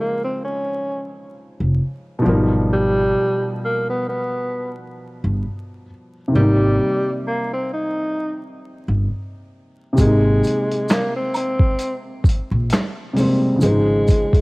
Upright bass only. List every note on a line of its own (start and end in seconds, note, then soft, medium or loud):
1.60 1.79 F1 medium
2.26 3.13 G#1 medium
5.24 5.42 G1 medium
6.35 6.77 G#1 loud
8.88 9.06 G1 medium
9.98 10.40 G#1 loud
12.51 12.70 A#1 medium
13.63 14.05 G#1 loud